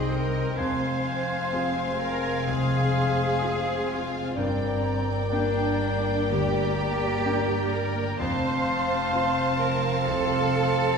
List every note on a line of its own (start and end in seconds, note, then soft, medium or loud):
0.00 0.54 C2 medium
0.00 0.61 G2 medium
0.00 0.54 G3 medium
0.00 0.54 C4 medium
0.00 0.54 C4 soft
0.00 0.54 D#4 medium
0.00 0.54 G4 medium
0.00 0.12 G#4 medium
0.00 0.54 C5 medium
0.00 0.54 D#5 medium
0.00 0.54 G5 medium
0.00 0.59 G5 medium
0.00 0.54 C6 medium
0.11 0.58 A#4 medium
0.57 4.37 F1 medium
0.57 1.50 F2 medium
0.57 4.34 G#3 medium
0.57 5.28 C4 medium
0.57 2.00 C5 medium
0.57 4.33 C5 medium
0.57 2.44 F5 medium
0.57 4.34 F5 medium
0.57 2.47 G#5 medium
0.57 4.34 G#5 medium
0.57 2.44 C6 medium
1.53 2.43 C4 medium
1.53 2.44 F4 soft
1.53 2.44 G#4 medium
2.00 2.46 A#4 loud
2.47 3.39 C2 medium
2.47 3.87 G#4 loud
2.47 4.06 F5 medium
2.47 4.06 G#5 medium
2.47 4.06 C6 medium
3.42 4.33 C4 medium
3.42 4.33 F4 medium
3.42 4.34 G#4 medium
3.90 4.37 F4 medium
4.37 8.16 G1 medium
4.37 5.28 G2 medium
4.37 8.02 G3 medium
4.37 8.02 A#4 medium
4.37 8.16 D5 medium
4.37 5.28 D5 medium
4.37 8.16 G5 medium
4.37 5.28 G5 medium
4.37 5.28 A#5 medium
5.31 6.26 A#3 medium
5.31 8.20 A#3 medium
5.31 6.26 D4 medium
5.31 6.26 D4 soft
5.31 6.26 G4 medium
5.31 6.28 D5 medium
5.31 6.28 G5 medium
5.31 6.28 A#5 medium
6.29 7.23 D2 medium
6.29 7.73 G4 loud
6.29 8.17 D5 medium
6.29 8.16 G5 medium
6.29 8.22 A#5 medium
7.25 8.16 A#3 medium
7.25 8.16 D4 medium
7.25 8.16 G4 medium
7.73 8.20 A#4 loud
8.19 10.98 F1 medium
8.19 9.10 F2 medium
8.19 10.98 F3 medium
8.19 10.98 C4 medium
8.19 9.56 C5 loud
8.19 10.98 C5 medium
8.19 10.98 F5 medium
8.19 10.03 F5 medium
8.19 10.98 A5 medium
8.19 10.03 A5 medium
8.19 10.05 C6 medium
9.13 10.02 C4 medium
9.13 10.03 F4 medium
9.13 10.03 C5 medium
9.59 10.06 A#4 loud
10.06 10.98 C2 medium
10.06 10.98 A4 loud
10.06 10.98 F5 medium
10.06 10.98 A5 medium
10.06 10.98 C6 medium